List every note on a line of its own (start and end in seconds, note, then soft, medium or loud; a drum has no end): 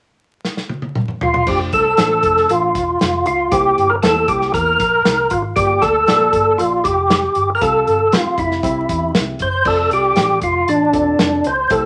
0.45 snare medium
0.57 snare soft
0.69 high tom medium
0.82 high tom medium
0.95 mid tom medium
1.08 mid tom medium
1.21 1.48 F4 medium
1.21 floor tom medium
1.34 floor tom medium
1.47 1.68 F1 loud
1.47 1.85 A3 medium
1.47 1.85 D4 medium
1.47 1.85 F4 medium
1.47 1.60 G4 medium
1.47 1.85 C5 medium
1.47 kick loud
1.47 crash medium
1.72 1.93 C2 medium
1.72 2.52 A4 medium
1.72 kick medium
1.72 closed hi-hat medium
1.97 2.19 A1 loud
1.97 2.75 A3 medium
1.97 2.75 D4 medium
1.97 2.75 F4 medium
1.97 2.75 C5 medium
1.97 snare loud
1.97 closed hi-hat medium
2.23 2.44 F1 medium
2.23 kick medium
2.23 closed hi-hat medium
2.37 snare soft
2.49 2.70 A1 medium
2.49 3.26 F4 medium
2.49 closed hi-hat medium
2.75 2.96 E1 medium
2.75 kick medium
2.75 closed hi-hat medium
3.01 3.22 F1 medium
3.01 snare loud
3.01 closed hi-hat medium
3.26 3.47 C#2 medium
3.26 3.53 F4 medium
3.26 closed hi-hat medium
3.51 3.73 C2 medium
3.51 4.25 C3 medium
3.51 3.90 A#3 medium
3.51 3.90 E4 medium
3.51 3.91 G4 loud
3.51 3.90 G4 medium
3.51 3.90 C5 medium
3.51 kick loud
3.51 closed hi-hat loud
3.78 3.98 G1 medium
3.78 closed hi-hat medium
3.90 3.96 A#4 loud
4.03 4.24 E2 medium
4.03 4.80 A#3 medium
4.03 4.80 E4 medium
4.03 4.80 G4 medium
4.03 4.29 A4 loud
4.03 4.80 C5 medium
4.03 snare loud
4.03 closed hi-hat medium
4.28 4.52 G4 medium
4.28 kick medium
4.28 closed hi-hat medium
4.41 snare soft
4.54 4.75 E2 medium
4.54 5.33 A#4 medium
4.54 kick medium
4.54 closed hi-hat medium
4.80 5.00 A#1 medium
4.80 kick medium
4.80 closed hi-hat medium
5.05 5.26 C2 medium
5.05 snare loud
5.05 closed hi-hat medium
5.30 5.52 G#1 medium
5.30 5.42 F4 medium
5.30 kick medium
5.30 closed hi-hat medium
5.56 5.77 G1 loud
5.56 6.29 G2 medium
5.56 5.94 A#3 medium
5.56 5.94 F4 medium
5.56 5.83 G4 medium
5.56 5.95 G4 medium
5.56 5.95 D5 medium
5.56 kick loud
5.56 closed hi-hat loud
5.82 6.03 D2 medium
5.82 6.61 A4 loud
5.82 kick medium
5.82 snare soft
5.82 closed hi-hat medium
6.07 6.29 A#1 medium
6.07 6.14 A3 medium
6.07 6.84 F4 medium
6.07 6.84 G4 medium
6.07 6.84 D5 medium
6.07 snare loud
6.07 closed hi-hat medium
6.14 6.87 A#3 medium
6.33 6.54 G1 medium
6.33 kick medium
6.33 closed hi-hat medium
6.58 6.80 A#1 medium
6.58 6.85 F4 medium
6.58 closed hi-hat medium
6.84 7.26 F1 medium
6.84 7.50 G4 medium
6.84 kick medium
6.84 closed hi-hat medium
7.10 snare loud
7.10 closed hi-hat medium
7.35 7.56 G1 medium
7.35 closed hi-hat medium
7.55 7.62 A#4 medium
7.61 7.82 C2 medium
7.61 8.34 C3 medium
7.61 7.99 C4 medium
7.61 7.99 F4 medium
7.61 7.99 G4 medium
7.61 8.14 A4 medium
7.61 8.00 F5 medium
7.61 kick medium
7.61 closed hi-hat loud
7.87 8.07 G1 medium
7.87 closed hi-hat medium
8.12 8.62 C4 medium
8.12 8.64 F4 medium
8.12 8.39 F4 medium
8.12 8.62 G4 medium
8.12 8.64 F5 medium
8.12 snare loud
8.12 closed hi-hat medium
8.24 muted fingered electric bass stroke soft
8.38 8.58 F1 medium
8.38 9.11 E4 medium
8.38 kick medium
8.38 closed hi-hat medium
8.51 snare soft
8.63 8.84 C2 medium
8.63 9.36 C3 medium
8.63 9.45 C4 medium
8.63 9.45 E4 medium
8.63 9.45 G4 medium
8.63 9.45 E5 medium
8.63 kick loud
8.63 closed hi-hat medium
8.89 9.10 E2 medium
8.89 kick medium
8.89 closed hi-hat medium
9.14 9.35 C2 medium
9.14 snare loud
9.14 closed hi-hat medium
9.39 9.61 F#1 medium
9.39 9.68 C5 medium
9.39 kick medium
9.39 closed hi-hat medium
9.65 9.86 F1 loud
9.65 10.42 C4 medium
9.65 10.42 F4 medium
9.65 10.42 A4 medium
9.65 9.90 A4 medium
9.65 10.42 D5 medium
9.65 kick loud
9.65 crash medium
9.91 10.12 C2 medium
9.91 10.40 G4 loud
9.91 closed hi-hat medium
10.16 10.37 A1 medium
10.16 snare loud
10.16 closed hi-hat medium
10.41 10.63 F1 medium
10.41 10.69 F4 medium
10.41 kick medium
10.41 closed hi-hat medium
10.68 10.89 A1 medium
10.68 11.48 D4 medium
10.68 closed hi-hat medium
10.93 11.14 E1 medium
10.93 11.51 C4 medium
10.93 11.51 F4 medium
10.93 11.51 A4 medium
10.93 11.51 D5 medium
10.93 kick medium
10.93 closed hi-hat medium
11.19 11.40 F1 medium
11.19 snare loud
11.19 closed hi-hat medium
11.44 11.66 C#2 medium
11.44 11.72 C5 medium
11.44 closed hi-hat medium
11.70 11.86 C2 loud
11.70 11.86 C3 medium
11.70 11.86 A#3 medium
11.70 11.86 E4 medium
11.70 11.86 G4 medium
11.70 11.86 A4 loud
11.70 11.86 C5 medium
11.70 kick loud
11.70 closed hi-hat medium